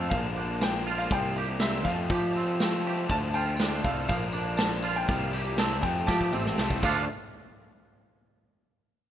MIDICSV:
0, 0, Header, 1, 6, 480
1, 0, Start_track
1, 0, Tempo, 497512
1, 1073, Time_signature, 4, 2, 24, 8
1, 8783, End_track
2, 0, Start_track
2, 0, Title_t, "Upright piano"
2, 0, Program_c, 0, 0
2, 96, Note_on_c, 0, 77, 93
2, 599, Note_off_c, 0, 77, 0
2, 602, Note_on_c, 0, 79, 93
2, 933, Note_off_c, 0, 79, 0
2, 949, Note_on_c, 0, 77, 81
2, 1075, Note_off_c, 0, 77, 0
2, 1082, Note_on_c, 0, 79, 98
2, 1543, Note_on_c, 0, 76, 86
2, 1572, Note_off_c, 0, 79, 0
2, 1778, Note_on_c, 0, 77, 83
2, 1796, Note_off_c, 0, 76, 0
2, 2231, Note_off_c, 0, 77, 0
2, 2997, Note_on_c, 0, 81, 109
2, 3051, Note_off_c, 0, 81, 0
2, 3224, Note_on_c, 0, 79, 101
2, 3709, Note_on_c, 0, 77, 85
2, 3723, Note_off_c, 0, 79, 0
2, 3929, Note_off_c, 0, 77, 0
2, 3944, Note_on_c, 0, 77, 95
2, 4411, Note_on_c, 0, 81, 102
2, 4442, Note_off_c, 0, 77, 0
2, 4756, Note_off_c, 0, 81, 0
2, 4789, Note_on_c, 0, 79, 96
2, 5389, Note_on_c, 0, 81, 93
2, 5408, Note_off_c, 0, 79, 0
2, 5623, Note_on_c, 0, 79, 91
2, 5637, Note_off_c, 0, 81, 0
2, 5855, Note_on_c, 0, 81, 93
2, 5874, Note_off_c, 0, 79, 0
2, 6544, Note_off_c, 0, 81, 0
2, 6590, Note_on_c, 0, 77, 88
2, 6814, Note_off_c, 0, 77, 0
2, 8783, End_track
3, 0, Start_track
3, 0, Title_t, "Clean electric guitar"
3, 0, Program_c, 1, 27
3, 0, Note_on_c, 1, 53, 75
3, 0, Note_on_c, 1, 57, 68
3, 0, Note_on_c, 1, 62, 66
3, 0, Note_on_c, 1, 65, 73
3, 105, Note_off_c, 1, 53, 0
3, 109, Note_on_c, 1, 53, 75
3, 110, Note_off_c, 1, 57, 0
3, 116, Note_off_c, 1, 62, 0
3, 358, Note_on_c, 1, 62, 72
3, 831, Note_off_c, 1, 65, 0
3, 835, Note_on_c, 1, 65, 71
3, 1076, Note_off_c, 1, 62, 0
3, 1079, Note_off_c, 1, 53, 0
3, 1082, Note_on_c, 1, 53, 76
3, 1326, Note_off_c, 1, 65, 0
3, 1330, Note_on_c, 1, 67, 78
3, 1565, Note_on_c, 1, 60, 74
3, 1792, Note_off_c, 1, 53, 0
3, 1796, Note_on_c, 1, 53, 75
3, 1799, Note_off_c, 1, 60, 0
3, 1802, Note_off_c, 1, 67, 0
3, 2041, Note_on_c, 1, 67, 78
3, 2278, Note_on_c, 1, 60, 72
3, 2523, Note_on_c, 1, 57, 73
3, 2754, Note_off_c, 1, 67, 0
3, 2766, Note_on_c, 1, 67, 74
3, 2995, Note_off_c, 1, 60, 0
3, 2996, Note_off_c, 1, 53, 0
3, 2998, Note_off_c, 1, 57, 0
3, 2999, Note_off_c, 1, 67, 0
3, 3000, Note_on_c, 1, 53, 77
3, 3234, Note_on_c, 1, 65, 72
3, 3478, Note_on_c, 1, 62, 68
3, 3718, Note_on_c, 1, 57, 74
3, 3949, Note_off_c, 1, 53, 0
3, 3953, Note_on_c, 1, 53, 76
3, 3955, Note_off_c, 1, 57, 0
3, 3955, Note_off_c, 1, 62, 0
3, 4181, Note_on_c, 1, 62, 72
3, 4663, Note_off_c, 1, 65, 0
3, 4667, Note_on_c, 1, 65, 80
3, 4906, Note_off_c, 1, 62, 0
3, 4912, Note_off_c, 1, 53, 0
3, 4916, Note_on_c, 1, 53, 73
3, 5151, Note_off_c, 1, 65, 0
3, 5155, Note_on_c, 1, 67, 77
3, 5388, Note_on_c, 1, 60, 70
3, 5603, Note_off_c, 1, 53, 0
3, 5614, Note_on_c, 1, 53, 70
3, 5630, Note_off_c, 1, 60, 0
3, 5633, Note_off_c, 1, 67, 0
3, 5858, Note_on_c, 1, 67, 83
3, 6117, Note_on_c, 1, 60, 69
3, 6364, Note_on_c, 1, 57, 76
3, 6577, Note_off_c, 1, 53, 0
3, 6584, Note_off_c, 1, 67, 0
3, 6586, Note_off_c, 1, 57, 0
3, 6589, Note_on_c, 1, 53, 88
3, 6594, Note_off_c, 1, 60, 0
3, 6598, Note_on_c, 1, 57, 98
3, 6606, Note_on_c, 1, 62, 109
3, 6606, Note_on_c, 1, 65, 101
3, 6782, Note_off_c, 1, 53, 0
3, 6786, Note_off_c, 1, 57, 0
3, 6790, Note_off_c, 1, 62, 0
3, 6790, Note_off_c, 1, 65, 0
3, 8783, End_track
4, 0, Start_track
4, 0, Title_t, "Overdriven electric guitar"
4, 0, Program_c, 2, 29
4, 0, Note_on_c, 2, 53, 90
4, 0, Note_on_c, 2, 57, 94
4, 0, Note_on_c, 2, 62, 104
4, 102, Note_on_c, 2, 46, 86
4, 104, Note_off_c, 2, 57, 0
4, 106, Note_off_c, 2, 62, 0
4, 109, Note_on_c, 2, 50, 91
4, 112, Note_off_c, 2, 53, 0
4, 116, Note_on_c, 2, 53, 93
4, 122, Note_on_c, 2, 58, 94
4, 130, Note_on_c, 2, 62, 104
4, 341, Note_off_c, 2, 62, 0
4, 352, Note_on_c, 2, 62, 65
4, 356, Note_off_c, 2, 58, 0
4, 368, Note_on_c, 2, 58, 59
4, 379, Note_off_c, 2, 53, 0
4, 383, Note_on_c, 2, 53, 58
4, 587, Note_off_c, 2, 46, 0
4, 591, Note_off_c, 2, 50, 0
4, 608, Note_on_c, 2, 50, 80
4, 613, Note_off_c, 2, 58, 0
4, 614, Note_off_c, 2, 53, 0
4, 618, Note_off_c, 2, 62, 0
4, 618, Note_on_c, 2, 53, 70
4, 625, Note_on_c, 2, 58, 89
4, 629, Note_on_c, 2, 62, 77
4, 830, Note_off_c, 2, 62, 0
4, 841, Note_on_c, 2, 62, 67
4, 845, Note_off_c, 2, 58, 0
4, 857, Note_on_c, 2, 58, 62
4, 865, Note_off_c, 2, 53, 0
4, 869, Note_on_c, 2, 53, 52
4, 1063, Note_off_c, 2, 62, 0
4, 1066, Note_off_c, 2, 50, 0
4, 1071, Note_off_c, 2, 58, 0
4, 1073, Note_on_c, 2, 48, 85
4, 1077, Note_off_c, 2, 53, 0
4, 1081, Note_on_c, 2, 55, 99
4, 1094, Note_on_c, 2, 58, 96
4, 1099, Note_on_c, 2, 64, 110
4, 1305, Note_off_c, 2, 64, 0
4, 1315, Note_off_c, 2, 58, 0
4, 1316, Note_on_c, 2, 64, 68
4, 1327, Note_on_c, 2, 58, 63
4, 1328, Note_off_c, 2, 55, 0
4, 1340, Note_on_c, 2, 55, 55
4, 1541, Note_off_c, 2, 48, 0
4, 1549, Note_off_c, 2, 55, 0
4, 1553, Note_on_c, 2, 48, 79
4, 1560, Note_on_c, 2, 55, 82
4, 1561, Note_off_c, 2, 58, 0
4, 1570, Note_off_c, 2, 64, 0
4, 1573, Note_on_c, 2, 58, 99
4, 1582, Note_on_c, 2, 64, 88
4, 1778, Note_off_c, 2, 48, 0
4, 1782, Note_off_c, 2, 55, 0
4, 1789, Note_off_c, 2, 58, 0
4, 1793, Note_off_c, 2, 64, 0
4, 1797, Note_on_c, 2, 60, 89
4, 1810, Note_on_c, 2, 57, 91
4, 1815, Note_on_c, 2, 53, 80
4, 1820, Note_on_c, 2, 48, 74
4, 1824, Note_on_c, 2, 41, 70
4, 2260, Note_off_c, 2, 60, 0
4, 2272, Note_on_c, 2, 60, 72
4, 2277, Note_off_c, 2, 57, 0
4, 2288, Note_on_c, 2, 57, 67
4, 2297, Note_off_c, 2, 53, 0
4, 2301, Note_on_c, 2, 53, 60
4, 2494, Note_off_c, 2, 48, 0
4, 2505, Note_on_c, 2, 48, 76
4, 2511, Note_off_c, 2, 57, 0
4, 2513, Note_off_c, 2, 53, 0
4, 2517, Note_on_c, 2, 53, 83
4, 2522, Note_on_c, 2, 57, 82
4, 2524, Note_off_c, 2, 60, 0
4, 2528, Note_off_c, 2, 41, 0
4, 2535, Note_on_c, 2, 60, 86
4, 2737, Note_off_c, 2, 60, 0
4, 2748, Note_on_c, 2, 60, 75
4, 2749, Note_off_c, 2, 57, 0
4, 2761, Note_on_c, 2, 57, 61
4, 2766, Note_off_c, 2, 53, 0
4, 2770, Note_on_c, 2, 53, 58
4, 2970, Note_off_c, 2, 48, 0
4, 2974, Note_on_c, 2, 50, 95
4, 2976, Note_off_c, 2, 60, 0
4, 2982, Note_off_c, 2, 57, 0
4, 2984, Note_off_c, 2, 53, 0
4, 2988, Note_on_c, 2, 53, 92
4, 2993, Note_on_c, 2, 57, 105
4, 3003, Note_on_c, 2, 62, 104
4, 3207, Note_off_c, 2, 62, 0
4, 3217, Note_off_c, 2, 57, 0
4, 3218, Note_on_c, 2, 62, 74
4, 3229, Note_on_c, 2, 57, 72
4, 3239, Note_off_c, 2, 53, 0
4, 3243, Note_on_c, 2, 53, 56
4, 3449, Note_off_c, 2, 50, 0
4, 3461, Note_off_c, 2, 53, 0
4, 3461, Note_on_c, 2, 50, 91
4, 3465, Note_off_c, 2, 57, 0
4, 3465, Note_on_c, 2, 53, 90
4, 3474, Note_off_c, 2, 62, 0
4, 3476, Note_on_c, 2, 57, 93
4, 3486, Note_on_c, 2, 62, 99
4, 3932, Note_off_c, 2, 50, 0
4, 3938, Note_on_c, 2, 46, 86
4, 3940, Note_off_c, 2, 57, 0
4, 3945, Note_off_c, 2, 62, 0
4, 3949, Note_on_c, 2, 50, 94
4, 3953, Note_off_c, 2, 53, 0
4, 3957, Note_on_c, 2, 53, 98
4, 3964, Note_on_c, 2, 58, 104
4, 3972, Note_on_c, 2, 62, 107
4, 4162, Note_off_c, 2, 62, 0
4, 4174, Note_on_c, 2, 62, 79
4, 4176, Note_off_c, 2, 58, 0
4, 4187, Note_on_c, 2, 58, 68
4, 4200, Note_off_c, 2, 53, 0
4, 4203, Note_on_c, 2, 53, 56
4, 4400, Note_off_c, 2, 50, 0
4, 4412, Note_on_c, 2, 50, 72
4, 4419, Note_off_c, 2, 53, 0
4, 4423, Note_off_c, 2, 58, 0
4, 4423, Note_on_c, 2, 53, 81
4, 4425, Note_off_c, 2, 46, 0
4, 4428, Note_off_c, 2, 62, 0
4, 4435, Note_on_c, 2, 58, 78
4, 4439, Note_on_c, 2, 62, 87
4, 4642, Note_off_c, 2, 62, 0
4, 4654, Note_on_c, 2, 62, 71
4, 4663, Note_off_c, 2, 58, 0
4, 4675, Note_on_c, 2, 58, 70
4, 4681, Note_off_c, 2, 53, 0
4, 4684, Note_on_c, 2, 53, 60
4, 4887, Note_off_c, 2, 50, 0
4, 4888, Note_off_c, 2, 62, 0
4, 4894, Note_on_c, 2, 48, 91
4, 4899, Note_off_c, 2, 58, 0
4, 4901, Note_off_c, 2, 53, 0
4, 4905, Note_on_c, 2, 55, 96
4, 4915, Note_on_c, 2, 58, 107
4, 4923, Note_on_c, 2, 64, 100
4, 5112, Note_off_c, 2, 64, 0
4, 5124, Note_on_c, 2, 64, 68
4, 5129, Note_off_c, 2, 58, 0
4, 5140, Note_off_c, 2, 55, 0
4, 5141, Note_on_c, 2, 58, 66
4, 5152, Note_on_c, 2, 55, 60
4, 5353, Note_off_c, 2, 48, 0
4, 5365, Note_on_c, 2, 48, 92
4, 5371, Note_off_c, 2, 55, 0
4, 5381, Note_off_c, 2, 58, 0
4, 5382, Note_on_c, 2, 55, 92
4, 5388, Note_off_c, 2, 64, 0
4, 5393, Note_on_c, 2, 58, 97
4, 5399, Note_on_c, 2, 64, 97
4, 5594, Note_off_c, 2, 64, 0
4, 5598, Note_on_c, 2, 60, 102
4, 5604, Note_off_c, 2, 48, 0
4, 5604, Note_off_c, 2, 58, 0
4, 5608, Note_on_c, 2, 57, 95
4, 5610, Note_off_c, 2, 55, 0
4, 5614, Note_on_c, 2, 53, 80
4, 5620, Note_on_c, 2, 48, 81
4, 5626, Note_on_c, 2, 41, 76
4, 6084, Note_off_c, 2, 60, 0
4, 6095, Note_off_c, 2, 57, 0
4, 6095, Note_on_c, 2, 60, 77
4, 6107, Note_on_c, 2, 57, 70
4, 6108, Note_off_c, 2, 53, 0
4, 6119, Note_on_c, 2, 53, 60
4, 6332, Note_off_c, 2, 48, 0
4, 6337, Note_off_c, 2, 53, 0
4, 6344, Note_on_c, 2, 48, 70
4, 6346, Note_off_c, 2, 57, 0
4, 6348, Note_off_c, 2, 41, 0
4, 6348, Note_on_c, 2, 53, 75
4, 6357, Note_off_c, 2, 60, 0
4, 6357, Note_on_c, 2, 57, 82
4, 6368, Note_on_c, 2, 60, 89
4, 6572, Note_off_c, 2, 57, 0
4, 6576, Note_off_c, 2, 48, 0
4, 6580, Note_off_c, 2, 53, 0
4, 6580, Note_on_c, 2, 50, 89
4, 6584, Note_on_c, 2, 57, 96
4, 6591, Note_off_c, 2, 60, 0
4, 6592, Note_on_c, 2, 62, 101
4, 6595, Note_on_c, 2, 65, 107
4, 6777, Note_off_c, 2, 50, 0
4, 6779, Note_off_c, 2, 57, 0
4, 6783, Note_off_c, 2, 62, 0
4, 6785, Note_off_c, 2, 65, 0
4, 8783, End_track
5, 0, Start_track
5, 0, Title_t, "Picked electric bass"
5, 0, Program_c, 3, 34
5, 107, Note_on_c, 3, 34, 101
5, 1032, Note_off_c, 3, 34, 0
5, 1069, Note_on_c, 3, 36, 94
5, 1786, Note_off_c, 3, 36, 0
5, 1786, Note_on_c, 3, 41, 92
5, 2011, Note_off_c, 3, 41, 0
5, 2026, Note_on_c, 3, 53, 91
5, 2950, Note_off_c, 3, 53, 0
5, 2990, Note_on_c, 3, 38, 90
5, 3672, Note_off_c, 3, 38, 0
5, 3709, Note_on_c, 3, 36, 89
5, 3932, Note_off_c, 3, 36, 0
5, 3951, Note_on_c, 3, 34, 105
5, 4873, Note_off_c, 3, 34, 0
5, 4907, Note_on_c, 3, 36, 100
5, 5627, Note_off_c, 3, 36, 0
5, 5627, Note_on_c, 3, 41, 97
5, 5850, Note_off_c, 3, 41, 0
5, 5872, Note_on_c, 3, 53, 93
5, 6093, Note_off_c, 3, 53, 0
5, 6107, Note_on_c, 3, 33, 88
5, 6325, Note_off_c, 3, 33, 0
5, 6349, Note_on_c, 3, 36, 84
5, 6566, Note_off_c, 3, 36, 0
5, 6592, Note_on_c, 3, 38, 101
5, 6814, Note_off_c, 3, 38, 0
5, 8783, End_track
6, 0, Start_track
6, 0, Title_t, "Drums"
6, 108, Note_on_c, 9, 46, 77
6, 111, Note_on_c, 9, 36, 105
6, 204, Note_off_c, 9, 46, 0
6, 207, Note_off_c, 9, 36, 0
6, 346, Note_on_c, 9, 46, 59
6, 443, Note_off_c, 9, 46, 0
6, 589, Note_on_c, 9, 46, 76
6, 593, Note_on_c, 9, 38, 105
6, 685, Note_off_c, 9, 46, 0
6, 689, Note_off_c, 9, 38, 0
6, 827, Note_on_c, 9, 46, 61
6, 924, Note_off_c, 9, 46, 0
6, 955, Note_on_c, 9, 38, 30
6, 1051, Note_off_c, 9, 38, 0
6, 1068, Note_on_c, 9, 46, 68
6, 1070, Note_on_c, 9, 36, 114
6, 1164, Note_off_c, 9, 46, 0
6, 1166, Note_off_c, 9, 36, 0
6, 1306, Note_on_c, 9, 46, 54
6, 1403, Note_off_c, 9, 46, 0
6, 1538, Note_on_c, 9, 46, 71
6, 1542, Note_on_c, 9, 38, 110
6, 1635, Note_off_c, 9, 46, 0
6, 1639, Note_off_c, 9, 38, 0
6, 1771, Note_on_c, 9, 46, 54
6, 1784, Note_on_c, 9, 36, 82
6, 1868, Note_off_c, 9, 46, 0
6, 1881, Note_off_c, 9, 36, 0
6, 2020, Note_on_c, 9, 46, 70
6, 2025, Note_on_c, 9, 36, 108
6, 2116, Note_off_c, 9, 46, 0
6, 2122, Note_off_c, 9, 36, 0
6, 2266, Note_on_c, 9, 46, 53
6, 2362, Note_off_c, 9, 46, 0
6, 2508, Note_on_c, 9, 46, 77
6, 2512, Note_on_c, 9, 38, 114
6, 2604, Note_off_c, 9, 46, 0
6, 2608, Note_off_c, 9, 38, 0
6, 2746, Note_on_c, 9, 46, 58
6, 2842, Note_off_c, 9, 46, 0
6, 2986, Note_on_c, 9, 46, 74
6, 2987, Note_on_c, 9, 36, 106
6, 2995, Note_on_c, 9, 54, 29
6, 3082, Note_off_c, 9, 46, 0
6, 3083, Note_off_c, 9, 36, 0
6, 3092, Note_off_c, 9, 54, 0
6, 3222, Note_on_c, 9, 54, 69
6, 3233, Note_on_c, 9, 46, 59
6, 3318, Note_off_c, 9, 54, 0
6, 3329, Note_off_c, 9, 46, 0
6, 3442, Note_on_c, 9, 54, 97
6, 3466, Note_on_c, 9, 46, 79
6, 3470, Note_on_c, 9, 38, 110
6, 3538, Note_off_c, 9, 54, 0
6, 3563, Note_off_c, 9, 46, 0
6, 3567, Note_off_c, 9, 38, 0
6, 3709, Note_on_c, 9, 36, 85
6, 3717, Note_on_c, 9, 46, 57
6, 3805, Note_off_c, 9, 36, 0
6, 3813, Note_off_c, 9, 46, 0
6, 3937, Note_on_c, 9, 54, 76
6, 3949, Note_on_c, 9, 36, 106
6, 3949, Note_on_c, 9, 46, 77
6, 4034, Note_off_c, 9, 54, 0
6, 4045, Note_off_c, 9, 46, 0
6, 4046, Note_off_c, 9, 36, 0
6, 4173, Note_on_c, 9, 54, 69
6, 4189, Note_on_c, 9, 46, 64
6, 4270, Note_off_c, 9, 54, 0
6, 4286, Note_off_c, 9, 46, 0
6, 4412, Note_on_c, 9, 54, 96
6, 4421, Note_on_c, 9, 46, 82
6, 4425, Note_on_c, 9, 38, 111
6, 4508, Note_off_c, 9, 54, 0
6, 4518, Note_off_c, 9, 46, 0
6, 4522, Note_off_c, 9, 38, 0
6, 4654, Note_on_c, 9, 54, 81
6, 4672, Note_on_c, 9, 46, 63
6, 4750, Note_off_c, 9, 54, 0
6, 4768, Note_off_c, 9, 46, 0
6, 4904, Note_on_c, 9, 54, 31
6, 4906, Note_on_c, 9, 46, 75
6, 4908, Note_on_c, 9, 36, 109
6, 5001, Note_off_c, 9, 54, 0
6, 5003, Note_off_c, 9, 46, 0
6, 5004, Note_off_c, 9, 36, 0
6, 5145, Note_on_c, 9, 54, 76
6, 5149, Note_on_c, 9, 46, 53
6, 5241, Note_off_c, 9, 54, 0
6, 5246, Note_off_c, 9, 46, 0
6, 5377, Note_on_c, 9, 54, 104
6, 5380, Note_on_c, 9, 46, 79
6, 5384, Note_on_c, 9, 38, 116
6, 5473, Note_off_c, 9, 54, 0
6, 5477, Note_off_c, 9, 46, 0
6, 5481, Note_off_c, 9, 38, 0
6, 5626, Note_on_c, 9, 36, 80
6, 5629, Note_on_c, 9, 46, 57
6, 5723, Note_off_c, 9, 36, 0
6, 5725, Note_off_c, 9, 46, 0
6, 5870, Note_on_c, 9, 36, 112
6, 5873, Note_on_c, 9, 54, 71
6, 5877, Note_on_c, 9, 38, 64
6, 5966, Note_off_c, 9, 36, 0
6, 5970, Note_off_c, 9, 54, 0
6, 5973, Note_off_c, 9, 38, 0
6, 5988, Note_on_c, 9, 36, 57
6, 6085, Note_off_c, 9, 36, 0
6, 6100, Note_on_c, 9, 54, 70
6, 6106, Note_on_c, 9, 47, 76
6, 6197, Note_off_c, 9, 54, 0
6, 6202, Note_off_c, 9, 47, 0
6, 6232, Note_on_c, 9, 38, 66
6, 6328, Note_off_c, 9, 38, 0
6, 6348, Note_on_c, 9, 38, 91
6, 6351, Note_on_c, 9, 54, 90
6, 6445, Note_off_c, 9, 38, 0
6, 6448, Note_off_c, 9, 54, 0
6, 6469, Note_on_c, 9, 36, 82
6, 6565, Note_off_c, 9, 36, 0
6, 6589, Note_on_c, 9, 36, 107
6, 6589, Note_on_c, 9, 49, 91
6, 6596, Note_on_c, 9, 54, 88
6, 6685, Note_off_c, 9, 36, 0
6, 6685, Note_off_c, 9, 49, 0
6, 6692, Note_off_c, 9, 54, 0
6, 8783, End_track
0, 0, End_of_file